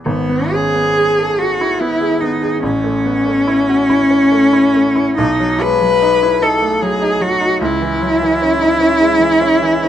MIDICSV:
0, 0, Header, 1, 3, 480
1, 0, Start_track
1, 0, Key_signature, 4, "major"
1, 0, Tempo, 910470
1, 27, Time_signature, 6, 3, 24, 8
1, 506, Tempo, 837989
1, 2426, Tempo, 857143
1, 3386, Tempo, 794702
1, 5306, Tempo, 854701
1, 5687, End_track
2, 0, Start_track
2, 0, Title_t, "Cello"
2, 0, Program_c, 0, 42
2, 29, Note_on_c, 0, 59, 93
2, 274, Note_on_c, 0, 68, 101
2, 282, Note_off_c, 0, 59, 0
2, 752, Note_on_c, 0, 66, 92
2, 760, Note_off_c, 0, 68, 0
2, 989, Note_on_c, 0, 64, 98
2, 998, Note_off_c, 0, 66, 0
2, 1222, Note_on_c, 0, 63, 89
2, 1230, Note_off_c, 0, 64, 0
2, 1459, Note_off_c, 0, 63, 0
2, 1462, Note_on_c, 0, 61, 120
2, 2890, Note_off_c, 0, 61, 0
2, 2909, Note_on_c, 0, 63, 101
2, 3157, Note_on_c, 0, 71, 112
2, 3165, Note_off_c, 0, 63, 0
2, 3627, Note_on_c, 0, 69, 92
2, 3636, Note_off_c, 0, 71, 0
2, 3868, Note_on_c, 0, 68, 95
2, 3877, Note_off_c, 0, 69, 0
2, 4105, Note_on_c, 0, 66, 105
2, 4114, Note_off_c, 0, 68, 0
2, 4342, Note_off_c, 0, 66, 0
2, 4350, Note_on_c, 0, 64, 122
2, 5687, Note_off_c, 0, 64, 0
2, 5687, End_track
3, 0, Start_track
3, 0, Title_t, "Grand piano"
3, 0, Program_c, 1, 0
3, 0, Control_c, 1, 64, 127
3, 31, Note_on_c, 1, 32, 61
3, 37, Control_c, 1, 64, 0
3, 134, Control_c, 1, 64, 127
3, 155, Note_on_c, 1, 59, 46
3, 283, Note_on_c, 1, 61, 44
3, 346, Note_off_c, 1, 59, 0
3, 396, Note_off_c, 1, 61, 0
3, 397, Note_on_c, 1, 59, 44
3, 512, Note_on_c, 1, 68, 53
3, 583, Note_off_c, 1, 59, 0
3, 634, Note_on_c, 1, 69, 44
3, 704, Note_off_c, 1, 68, 0
3, 752, Note_off_c, 1, 69, 0
3, 754, Note_on_c, 1, 68, 53
3, 878, Note_on_c, 1, 64, 54
3, 944, Note_off_c, 1, 68, 0
3, 991, Note_on_c, 1, 59, 49
3, 1065, Note_off_c, 1, 64, 0
3, 1107, Note_on_c, 1, 68, 52
3, 1180, Note_off_c, 1, 59, 0
3, 1230, Note_on_c, 1, 59, 47
3, 1296, Note_off_c, 1, 68, 0
3, 1343, Note_on_c, 1, 68, 52
3, 1417, Note_off_c, 1, 59, 0
3, 1442, Note_off_c, 1, 32, 0
3, 1462, Note_off_c, 1, 68, 0
3, 1463, Note_on_c, 1, 33, 61
3, 1470, Control_c, 1, 64, 0
3, 1548, Control_c, 1, 64, 127
3, 1581, Note_on_c, 1, 57, 47
3, 1707, Note_on_c, 1, 59, 46
3, 1773, Note_off_c, 1, 57, 0
3, 1824, Note_on_c, 1, 57, 43
3, 1825, Note_off_c, 1, 59, 0
3, 1946, Note_on_c, 1, 64, 56
3, 2016, Note_off_c, 1, 57, 0
3, 2069, Note_on_c, 1, 66, 47
3, 2138, Note_off_c, 1, 64, 0
3, 2187, Note_off_c, 1, 66, 0
3, 2188, Note_on_c, 1, 64, 58
3, 2307, Note_on_c, 1, 61, 54
3, 2379, Note_off_c, 1, 64, 0
3, 2429, Note_on_c, 1, 57, 51
3, 2498, Note_off_c, 1, 61, 0
3, 2548, Note_on_c, 1, 64, 54
3, 2618, Note_off_c, 1, 57, 0
3, 2665, Note_on_c, 1, 57, 45
3, 2741, Note_off_c, 1, 64, 0
3, 2786, Note_on_c, 1, 64, 54
3, 2862, Note_off_c, 1, 57, 0
3, 2890, Note_off_c, 1, 33, 0
3, 2912, Note_off_c, 1, 64, 0
3, 2913, Note_on_c, 1, 35, 68
3, 2923, Control_c, 1, 64, 0
3, 3008, Control_c, 1, 64, 127
3, 3035, Note_on_c, 1, 54, 53
3, 3157, Note_on_c, 1, 56, 49
3, 3226, Note_off_c, 1, 54, 0
3, 3270, Note_on_c, 1, 54, 46
3, 3273, Note_off_c, 1, 56, 0
3, 3383, Note_on_c, 1, 63, 52
3, 3456, Note_off_c, 1, 54, 0
3, 3506, Note_on_c, 1, 64, 46
3, 3576, Note_off_c, 1, 63, 0
3, 3625, Note_off_c, 1, 64, 0
3, 3625, Note_on_c, 1, 63, 54
3, 3744, Note_on_c, 1, 57, 56
3, 3815, Note_off_c, 1, 63, 0
3, 3867, Note_on_c, 1, 54, 50
3, 3934, Note_off_c, 1, 57, 0
3, 3982, Note_on_c, 1, 63, 53
3, 4055, Note_off_c, 1, 54, 0
3, 4101, Note_on_c, 1, 54, 51
3, 4172, Note_off_c, 1, 63, 0
3, 4220, Note_on_c, 1, 63, 55
3, 4292, Note_off_c, 1, 54, 0
3, 4316, Note_off_c, 1, 35, 0
3, 4340, Note_off_c, 1, 63, 0
3, 4344, Note_on_c, 1, 37, 67
3, 4348, Control_c, 1, 64, 0
3, 4425, Control_c, 1, 64, 127
3, 4467, Note_on_c, 1, 52, 51
3, 4590, Note_on_c, 1, 54, 47
3, 4658, Note_off_c, 1, 52, 0
3, 4707, Note_off_c, 1, 54, 0
3, 4712, Note_on_c, 1, 52, 51
3, 4831, Note_on_c, 1, 61, 53
3, 4900, Note_off_c, 1, 52, 0
3, 4945, Note_on_c, 1, 63, 48
3, 5019, Note_off_c, 1, 61, 0
3, 5064, Note_off_c, 1, 63, 0
3, 5065, Note_on_c, 1, 61, 57
3, 5183, Note_on_c, 1, 56, 54
3, 5257, Note_off_c, 1, 61, 0
3, 5301, Note_on_c, 1, 52, 49
3, 5374, Note_off_c, 1, 56, 0
3, 5422, Note_on_c, 1, 61, 56
3, 5490, Note_off_c, 1, 52, 0
3, 5540, Note_on_c, 1, 52, 54
3, 5615, Note_off_c, 1, 61, 0
3, 5661, Note_on_c, 1, 61, 57
3, 5687, Note_off_c, 1, 37, 0
3, 5687, Note_off_c, 1, 52, 0
3, 5687, Note_off_c, 1, 61, 0
3, 5687, End_track
0, 0, End_of_file